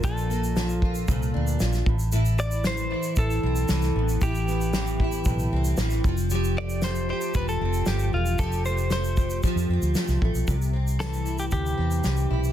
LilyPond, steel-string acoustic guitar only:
\new Staff \with { instrumentName = "Steel-string acoustic guitar" } { \time 4/4 \key c \major \tempo 4 = 115 <bes, f bes d' f'>8 bes8 f8 f'8 bes,8 d'8 f8 a,8 | <a, e'>4 e8 e'8 a,8 c'8 e8 b8 | <a, e'>8 b8 e8 e'8 a,8 c'8 e8 f8 | <f g'>8 a8 a8 g'8 f8 c'8 a8 a8 |
<f g'>8 a8 a8 g'8 f8 c'8 a8 a8 | c8 c'8 e8 e'8 c8 c'8 e8 e'8 | }